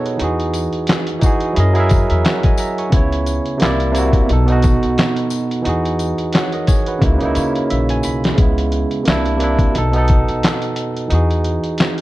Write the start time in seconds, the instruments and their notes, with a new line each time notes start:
Already playing: tine electric piano B2 B3 D#4 F#4 G#4 A4 C#5 D#5 F#5
0.06 tine electric piano F#4 B4, closed hi-hat
0.17 upright bass E2, tine electric piano E3 D#4, closed hi-hat
0.22 tine electric piano F#4 G#4
0.40 closed hi-hat
0.54 closed hi-hat, tambourine
0.73 closed hi-hat
0.87 snare, clap, closed hi-hat
1.07 closed hi-hat
1.19 tine electric piano E3 D#4, kick, closed hi-hat
1.23 tine electric piano F#4 G#4, tambourine
1.40 closed hi-hat
1.53 tine electric piano F#3 E4 G#4, closed hi-hat
1.57 upright bass F#2, tine electric piano A#4 D#5
1.73 tine electric piano F#3 E4 G#4, closed hi-hat
1.78 tine electric piano A#4 E5
1.89 kick, closed hi-hat, tambourine
2.10 upright bass E2, tine electric piano A#4 E5, closed hi-hat
2.25 tine electric piano C#5 F#5, snare, clap, closed hi-hat
2.43 tine electric piano D#5 G#5, kick, closed hi-hat
2.58 tine electric piano E5 A#5, closed hi-hat, tambourine
2.78 tine electric piano G#5 C#6, closed hi-hat
2.90 upright bass C#2, tine electric piano C#3 B3, kick, closed hi-hat
2.94 tine electric piano E4 C#5
3.12 closed hi-hat
3.26 closed hi-hat, tambourine
3.46 closed hi-hat
3.57 tine electric piano C3 A#3, closed hi-hat
3.62 upright bass C2, tine electric piano E4 D5, snare, clap
3.80 closed hi-hat
3.92 tine electric piano C3 A#3, closed hi-hat
3.96 tine electric piano E4 F#4, tambourine
4.13 kick, closed hi-hat
4.26 tine electric piano B2 B3, closed hi-hat
4.30 upright bass B1, tine electric piano D#4 A4
4.45 tine electric piano B2 B3, closed hi-hat
4.50 tine electric piano D#4 F#4
4.62 kick, closed hi-hat, tambourine
4.83 upright bass B1, closed hi-hat
4.98 snare, clap, closed hi-hat
5.16 closed hi-hat
5.30 closed hi-hat, tambourine
5.51 closed hi-hat
5.62 tine electric piano E3 D#4, closed hi-hat
5.66 upright bass E2, tine electric piano F#4 G#4
5.85 closed hi-hat
5.99 closed hi-hat, tambourine
6.18 closed hi-hat
6.33 tine electric piano C#5 F#5, snare, clap, closed hi-hat
6.52 tine electric piano A#4 D#5, closed hi-hat
6.67 tine electric piano G#4 C#5, kick, snare, closed hi-hat, tambourine
6.86 tine electric piano F#4 B4, closed hi-hat
6.99 upright bass C#2, tine electric piano C#3 A#3, kick, closed hi-hat
7.03 tine electric piano D#4 E4
7.18 tine electric piano C#3 A#3, closed hi-hat
7.23 upright bass C#2, tine electric piano D#4 E4
7.35 upright bass C#3, tine electric piano C#5, closed hi-hat, tambourine
7.55 closed hi-hat
7.70 upright bass A#1, tine electric piano E5, closed hi-hat
7.89 tine electric piano G#5, closed hi-hat
8.03 upright bass B1, tine electric piano B5, closed hi-hat, tambourine
8.24 snare, closed hi-hat
8.35 upright bass C#2, tine electric piano C#3 G#3, kick, closed hi-hat
8.40 tine electric piano B3 E4
8.58 closed hi-hat
8.72 closed hi-hat
8.91 closed hi-hat
9.03 tine electric piano C3 A#3, closed hi-hat
9.07 upright bass C2, tine electric piano D4 E4, snare, clap
9.25 closed hi-hat
9.37 tine electric piano C3 A#3, closed hi-hat
9.42 tine electric piano D4 E4
9.59 kick, closed hi-hat
9.71 tine electric piano B2 B3, closed hi-hat
9.76 upright bass B1, tine electric piano D#4 A4
9.91 tine electric piano B2 B3, closed hi-hat
9.96 tine electric piano D#4 A4
10.08 kick, closed hi-hat
10.28 upright bass B1, closed hi-hat
10.43 snare, clap, closed hi-hat
10.62 closed hi-hat
10.76 closed hi-hat
10.97 closed hi-hat
11.08 upright bass E2, tine electric piano E3 D#4, closed hi-hat
11.12 tine electric piano F#4 G#4
11.31 closed hi-hat
11.44 closed hi-hat
11.64 closed hi-hat
11.78 snare, clap, closed hi-hat
11.98 closed hi-hat